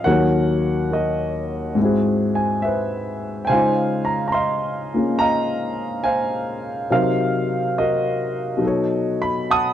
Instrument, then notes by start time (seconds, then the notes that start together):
grand piano
0.04 D#2 D#3 F#3 A#4 C#5 F#5
0.09 F#4 C#5
0.91 F#4 A#4 D#5
1.75 G#2 G#3 C4
1.81 E4 F#4 G#4
2.35 G#5
2.62 B4 C5 E5
3.45 C5 G5 G#5
3.49 C#3 G#3 D#4 F5
3.54 F4 C5
4.05 A#5
4.28 A#5
4.32 D#5 F5 C6
4.94 A#3 C#4 F4 G#4
5.19 D#5 F5 A#5
6.04 C5 F5 G#5
6.90 C3 F#3 D#4 A#4 C5 F5
7.78 F#4 A#4 D#5
8.57 B2 F#3
8.62 D#4 A4
8.67 C#5
9.22 B5
9.50 F#5 A5 D#6